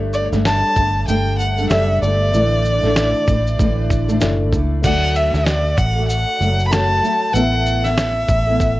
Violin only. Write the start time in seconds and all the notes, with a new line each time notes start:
0.14 D5
0.45 A5
1.08 G5
1.38 F#5
1.70 E5
2.02 D5
4.84 F#5
5.16 E5
5.46 D5
5.78 F#5
6.09 F#5
6.67 B5
6.71 A5
7.34 F#5
7.84 E5